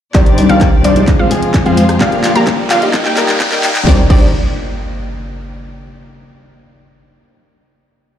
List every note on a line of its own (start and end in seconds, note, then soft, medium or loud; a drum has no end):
0.14 0.47 C2 medium
0.14 1.99 C3 medium
0.14 0.46 D#3 medium
0.14 1.07 D#3 medium
0.14 0.47 G3 medium
0.14 1.07 G3 medium
0.14 0.47 C4 medium
0.14 0.47 D4 medium
0.14 0.47 D#4 medium
0.14 0.47 G4 loud
0.14 0.47 C5 medium
0.14 0.47 D5 medium
0.14 0.47 D5 loud
0.14 1.07 D5 medium
0.14 0.47 D5 medium
0.14 kick loud
0.14 clap soft
0.14 closed hi-hat medium
0.14 riser medium
0.26 closed hi-hat soft
0.38 open hi-hat loud
0.49 0.82 C2 medium
0.49 0.93 D#3 medium
0.49 0.61 G3 loud
0.49 0.93 C4 medium
0.49 0.61 D4 medium
0.49 0.93 D4 medium
0.49 0.61 D#4 medium
0.49 0.94 G4 loud
0.49 0.61 C5 medium
0.49 0.61 F5 loud
0.49 closed hi-hat medium
0.61 kick loud
0.61 cross-stick medium
0.61 clap soft
0.61 closed hi-hat medium
0.84 1.17 C2 loud
0.84 1.03 G3 medium
0.84 1.03 D4 medium
0.84 1.03 D#4 medium
0.84 1.03 C5 medium
0.84 1.03 D5 medium
0.84 open hi-hat loud
0.95 1.28 F3 medium
0.95 1.28 G#3 medium
0.95 1.28 C4 medium
0.95 1.28 C5 medium
0.95 closed hi-hat medium
1.08 2.00 F3 medium
1.08 2.00 G#3 medium
1.08 2.92 F4 medium
1.08 kick loud
1.08 clap medium
1.08 closed hi-hat medium
1.19 1.29 F1 loud
1.19 1.31 G#3 medium
1.19 1.31 C4 medium
1.19 1.31 F4 medium
1.19 1.31 C5 medium
1.19 1.31 F5 medium
1.30 1.63 F3 loud
1.30 1.63 G#3 medium
1.30 1.63 C4 medium
1.30 1.63 G#4 loud
1.30 open hi-hat loud
1.43 closed hi-hat medium
1.54 kick loud
1.54 clap medium
1.54 closed hi-hat medium
1.65 1.98 F2 loud
1.65 1.98 F3 medium
1.65 1.98 G#3 medium
1.65 1.85 G#3 medium
1.65 1.98 C4 medium
1.65 1.85 C4 medium
1.65 1.85 F4 medium
1.65 1.98 G#4 loud
1.65 1.85 C5 medium
1.65 1.85 F5 medium
1.65 closed hi-hat soft
1.77 open hi-hat loud
1.89 cross-stick medium
1.89 closed hi-hat medium
2.00 2.33 A#1 loud
2.00 2.32 A#2 medium
2.00 2.93 D3 medium
2.00 2.33 F3 medium
2.00 3.85 G3 medium
2.00 3.85 A#3 medium
2.00 2.33 A#3 medium
2.00 2.33 D4 medium
2.00 2.33 F4 medium
2.00 2.33 G4 medium
2.00 2.33 G4 loud
2.00 2.33 D5 medium
2.00 2.33 F5 loud
2.00 kick loud
2.00 clap medium
2.00 closed hi-hat medium
2.12 closed hi-hat soft
2.24 clap medium
2.24 open hi-hat loud
2.35 2.68 A#1 loud
2.35 2.79 A#2 medium
2.35 2.79 F3 medium
2.35 2.79 A#3 medium
2.35 2.47 A#3 loud
2.35 2.79 D4 medium
2.35 2.47 F4 medium
2.35 2.47 G4 medium
2.35 2.80 G4 loud
2.35 2.47 D5 medium
2.35 2.47 A#5 loud
2.35 closed hi-hat medium
2.47 kick loud
2.47 clap medium
2.47 closed hi-hat medium
2.70 3.03 A#1 loud
2.70 2.89 A#3 medium
2.70 2.89 F4 medium
2.70 2.89 G4 medium
2.70 2.89 D5 medium
2.70 2.89 F5 medium
2.70 clap medium
2.70 open hi-hat loud
2.81 3.14 G3 medium
2.81 3.14 A#3 medium
2.81 3.14 D#4 medium
2.81 3.14 D#5 medium
2.81 closed hi-hat medium
2.94 3.86 D#3 medium
2.94 3.86 G4 medium
2.94 kick loud
2.94 clap medium
2.94 closed hi-hat medium
3.05 3.15 D#2 loud
3.05 3.17 A#3 medium
3.05 3.17 D#4 medium
3.05 3.17 G4 medium
3.05 3.17 D#5 medium
3.05 3.17 G5 medium
3.05 clap medium
3.16 3.49 G3 loud
3.16 3.49 A#3 medium
3.16 3.49 D#4 medium
3.16 3.49 A#4 loud
3.16 clap medium
3.16 open hi-hat loud
3.29 clap medium
3.29 closed hi-hat medium
3.40 kick loud
3.40 clap loud
3.40 closed hi-hat medium
3.51 3.84 D#2 loud
3.51 3.84 G3 loud
3.51 3.84 A#3 medium
3.51 3.71 A#3 medium
3.51 3.84 D#4 medium
3.51 3.71 D#4 medium
3.51 3.71 G4 medium
3.51 3.84 A#4 loud
3.51 3.71 D#5 medium
3.51 3.71 G5 medium
3.51 clap loud
3.51 closed hi-hat soft
3.64 clap loud
3.64 open hi-hat loud
3.75 clap loud
3.75 closed hi-hat medium
3.85 4.00 C2 loud
3.85 3.99 D#3 medium
3.85 4.08 D#3 medium
3.85 4.00 G3 medium
3.85 3.99 C4 medium
3.85 4.08 C4 medium
3.85 4.08 D4 medium
3.85 4.00 D4 medium
3.85 4.00 D#4 medium
3.85 4.08 G4 medium
3.85 4.01 G4 medium
3.85 4.00 C5 medium
3.85 4.00 D5 medium
3.85 4.00 D5 loud
3.85 kick loud
3.85 snare medium
3.85 impact medium
4.08 4.32 C2 loud
4.08 4.26 D#3 medium
4.08 4.27 G3 medium
4.08 4.27 C4 medium
4.08 4.27 D4 medium
4.08 4.28 D4 medium
4.08 4.27 D#4 medium
4.08 4.28 G4 loud
4.08 4.27 C5 medium
4.08 4.27 D5 medium
4.08 4.27 D5 loud
4.08 kick loud
4.08 crash medium